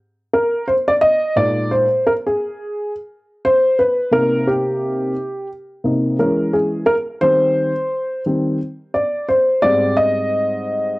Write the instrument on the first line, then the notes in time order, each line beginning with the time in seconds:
upright piano
0.33 A#4
0.68 C5
0.88 D5
1.01 D#5
1.36 A#2 G#3 D#4 D5
1.71 C5
2.07 A#4
2.27 G#4
3.45 C5
3.79 B4
4.11 C3 A#3 D#4 A#4
4.47 G4
5.84 C3 A#3 D#4
6.19 E3 G#3 C#4 A#4
6.53 G#4
6.86 A#4
7.21 D#3 G3 C4 C5
8.26 D#3 G3 C4
8.94 D5
9.29 C5
9.62 G#2 G3 C4 D5
9.97 D#5